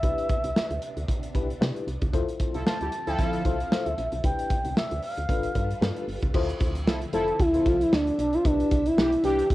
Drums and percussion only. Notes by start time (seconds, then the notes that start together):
0.03 kick, closed hi-hat
0.18 closed hi-hat
0.29 kick, closed hi-hat
0.44 closed hi-hat
0.56 snare
0.70 closed hi-hat
0.82 closed hi-hat
0.97 closed hi-hat
1.08 kick, closed hi-hat
1.23 closed hi-hat
1.35 kick, closed hi-hat
1.50 closed hi-hat
1.62 snare
1.76 closed hi-hat
1.88 closed hi-hat
2.02 kick, closed hi-hat
2.14 kick, closed hi-hat
2.29 closed hi-hat
2.40 kick, closed hi-hat
2.54 closed hi-hat
2.67 snare
2.81 closed hi-hat
2.92 closed hi-hat
3.07 closed hi-hat
3.19 kick, closed hi-hat
3.33 closed hi-hat
3.45 kick, closed hi-hat
3.60 closed hi-hat
3.72 snare
3.86 closed hi-hat
3.98 closed hi-hat
4.12 closed hi-hat
4.24 kick, closed hi-hat
4.39 closed hi-hat
4.50 kick, closed hi-hat
4.65 closed hi-hat
4.77 snare
4.91 closed hi-hat
5.03 open hi-hat
5.17 closed hi-hat
5.29 kick, closed hi-hat
5.43 closed hi-hat
5.55 kick, closed hi-hat
5.71 closed hi-hat
5.82 snare
5.97 closed hi-hat
6.09 open hi-hat
6.22 kick, closed hi-hat
6.34 kick, crash
6.49 closed hi-hat
6.61 kick, closed hi-hat
6.75 closed hi-hat
6.88 snare
7.02 closed hi-hat
7.13 closed hi-hat
7.28 closed hi-hat
7.40 kick, closed hi-hat
7.54 closed hi-hat
7.66 kick, closed hi-hat
7.81 closed hi-hat
7.93 snare
8.07 closed hi-hat
8.19 closed hi-hat
8.33 closed hi-hat
8.45 kick, closed hi-hat
8.60 closed hi-hat
8.71 kick, closed hi-hat
8.86 closed hi-hat
8.98 snare
9.12 closed hi-hat
9.24 closed hi-hat
9.39 closed hi-hat
9.50 kick, closed hi-hat